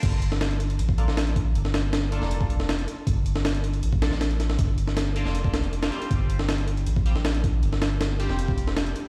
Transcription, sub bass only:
\new Staff \with { instrumentName = "Sub bass" } { \clef bass \time 4/4 \key g \minor \tempo 4 = 158 g,,2 a,,2 | g,,4.~ g,,16 f,,4.~ f,,16 r8 | g,,2 a,,2 | g,,4.~ g,,16 f,,4.~ f,,16 r8 |
g,,2 a,,2 | g,,4.~ g,,16 f,,4.~ f,,16 r8 | }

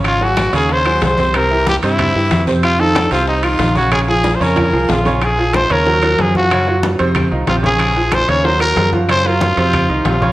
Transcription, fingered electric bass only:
\new Staff \with { instrumentName = "Fingered electric bass" } { \clef bass \time 4/4 \key bes \minor \tempo 4 = 186 aes,,4. ees,4. c,4~ | c,4. g,4 g,8 f,4~ | f,4. c,4. bes,,4~ | bes,,4. f,4 c,8 bes,,4~ |
bes,,4. ees,4. ges,4~ | ges,4. f,4 c,8 bes,,4~ | bes,,4. ees,4. ges,4~ | ges,4. f,4 c,8 bes,,4 | }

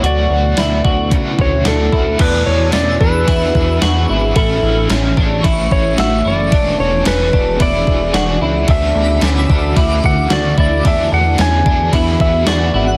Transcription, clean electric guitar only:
\new Staff \with { instrumentName = "Clean electric guitar" } { \time 4/4 \key e \mixolydian \tempo 4 = 111 fis'4 e'8 fis'8 cis4 d'8 e'8 | d'4 cis'8 d'8 e'4 fis'8 e'8 | e'4 cis'8 d'8 e'4 fis'8 e'8 | d'4 cis'8 d'8 e'4 fis'8 e'8 |
d'4 cis'8 d'8 e'4 fis'8 e'8 | d'4 cis'8 d'8 e'4 fis'8 e'8 | }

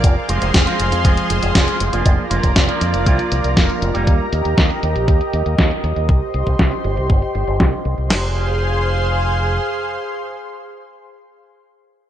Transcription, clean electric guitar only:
\new Staff \with { instrumentName = "Clean electric guitar" } { \time 4/4 \key f \dorian \tempo 4 = 119 r8 <f aes c' f'>8. <f aes c' f'>8. <f aes c' f'>4 <f aes c' f'>8. <f bes d' f'>16~ | <f bes d' f'>16 r16 <f bes d' f'>8. <f bes d' f'>8. <f bes d' f'>4 <f bes d' f'>8. <g bes ees' g'>16~ | <g bes ees' g'>16 r2. r8. | r1 |
r1 | r1 | }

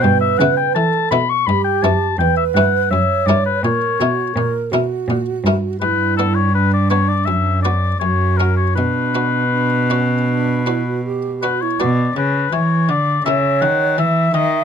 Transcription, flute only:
\new Staff \with { instrumentName = "Flute" } { \time 4/4 \key b \minor \tempo 4 = 83 b'4 a'8 r8 g'4 b'4 | cis''4 ais'8 fis'8 ais'8 fis'4. | e'4 d'4. r8 fis'4 | d'4 d'8 cis'8 d'8 e'16 fis'16 g'8 fis'16 e'16 |
r2 cis''4 e''4 | }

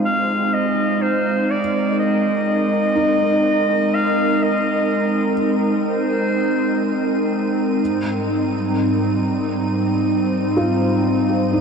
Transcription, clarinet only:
\new Staff \with { instrumentName = "Clarinet" } { \time 4/4 \key aes \major \tempo 4 = 62 f''8 ees''8 c''8 d''8 ees''2 | f''8 ees''4 r8 c''4. r8 | r1 | }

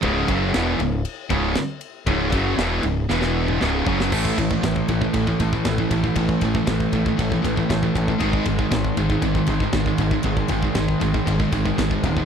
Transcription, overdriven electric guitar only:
\new Staff \with { instrumentName = "Overdriven electric guitar" } { \clef bass \time 4/4 \key a \lydian \tempo 4 = 118 <cis, gis, cis>8 <fis, cis fis>8 <e, b, e>8 <cis, gis,>8 r8 <cis, gis, cis>8 r4 | <cis, gis, cis>8 <fis, cis fis>8 <e, b, e>8 <cis, gis,>8 <e, b, e>4 <cis, gis, cis>8 <fis, cis fis>8 | <a, e a>8 <a, e a>8 <a, e a>8 <a, e a>8 <a, e a>8 <a, e a>8 <a, e a>8 <a, e a>8 | <a, e a>8 <a, e a>8 <a, e a>8 <a, e a>8 <a, e a>8 <a, e a>8 <a, e a>8 <a, e a>8 |
<gis, dis gis>8 <gis, dis gis>8 <gis, dis gis>8 <gis, dis gis>8 <gis, dis gis>8 <gis, dis gis>8 <gis, dis gis>8 <gis, dis gis>8 | <gis, dis gis>8 <gis, dis gis>8 <gis, dis gis>8 <gis, dis gis>8 <gis, dis gis>8 <gis, dis gis>8 <gis, dis gis>8 <gis, dis gis>8 | }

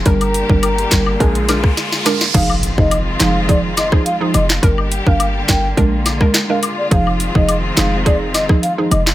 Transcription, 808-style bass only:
\new Staff \with { instrumentName = "808-style bass" } { \clef bass \time 4/4 \key f \dorian \tempo 4 = 105 g,,8. g,,8. g,,8 bes,,4 r4 | f,,8. f,,8. f,,4. r8 f,,8 | g,,8. g,,8. g,,8 bes,,4 r4 | f,,8. f,,8. f,,4. r8 f,,8 | }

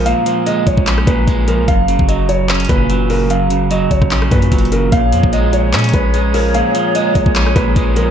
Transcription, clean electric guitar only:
\new Staff \with { instrumentName = "Clean electric guitar" } { \clef bass \time 4/4 \key bes \phrygian \tempo 4 = 148 <bes, f aes des'>8 f8 aes4 des'8 bes,8 aes8 f8 | ges,8 des8 ges4 des'8 bes,8 ges8 des8 | ges,8 des8 ges4 des'8 bes,8 ges8 des8 | bes,8 f8 aes4 des'4 aes8 f8 |
bes,8 f8 aes4 des'8 bes,8 aes8 f8 | }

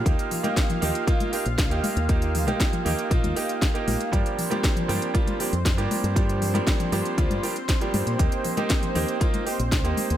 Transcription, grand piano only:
\new Staff \with { instrumentName = "Grand piano" } { \time 4/4 \key ees \lydian \tempo 4 = 118 <bes ees' g'>8. <bes ees' g'>8. <bes ees' g'>8 <bes ees' f'>8 <bes ees' g'>16 r8 <bes ees' g'>8. | <bes ees' g'>8. <bes ees' g'>8. <bes ees' g'>8 <bes ees' f'>8 <bes ees' g'>8. <bes ees' g'>8. | <f g bes d' g'>8. <f g bes d' g'>8. <f g bes d' g'>8 <f g bes d' f'>8 <f g bes d' g'>16 r8 <f g bes d' g'>8. | <f g bes d' g'>8. <f g bes d' g'>8. <f g bes d' g'>8 <f g bes d' f'>8 <f g bes d' g'>16 r8 <f g bes d' g'>8. |
<bes ees' g'>8. <bes ees' g'>8. <bes ees' g'>8 <bes ees' f'>8 <bes ees' g'>16 r8 <bes ees' g'>8. | }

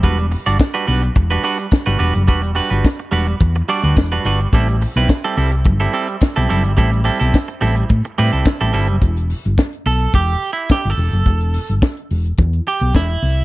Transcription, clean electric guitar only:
\new Staff \with { instrumentName = "Clean electric guitar" } { \time 4/4 \key e \minor \tempo 4 = 107 <g d' fis' b'>8 r16 <g d' fis' d''>16 r16 <g d' fis' b'>16 <g d' fis' b'>16 r8 <g d' fis' b'>16 <g d' fis' b'>8 r16 <g d' fis' b'>16 <g d' fis' b'>8 | <g d' fis' b'>8 <g d' fis' b'>16 <g d' fis' b'>16 r8 <g d' fis' b'>8 r8 <g d' fis' d''>16 <g d' fis' b'>16 r16 <g d' fis' b'>16 <g d' fis' b'>8 | <g c' e' a'>8 r16 <g c' e' b'>16 r16 <g c' e' a'>16 <g c' e' a'>16 r8 <g c' e' a'>16 <g c' e' a'>8 r16 <g c' e' a'>16 <g c' e' a'>8 | <g c' e' a'>8 <g c' e' a'>16 <g c' e' a'>16 r8 <g c' e' a'>8 r8 <g c' e' b'>16 <g c' e' a'>16 r16 <g c' e' a'>16 <g c' e' a'>8 |
r4. a'8 \tuplet 3/2 { g'4 e'8 g'8 a'4~ } | a'4 r4. g'8 e'4 | }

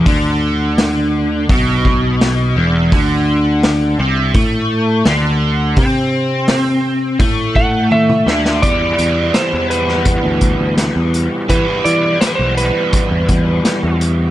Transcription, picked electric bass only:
\new Staff \with { instrumentName = "Picked electric bass" } { \clef bass \time 4/4 \key e \minor \tempo 4 = 84 d,2 b,,4. e,,8 | d,4. c,8 a,4 d,4 | c2 a,4. d,8 | e,8 e,8 r16 e,4 d,8 d,8 e,8 r16 |
e16 r16 e8 r16 b,,8 r8 e,16 e,8 r16 e,8. | }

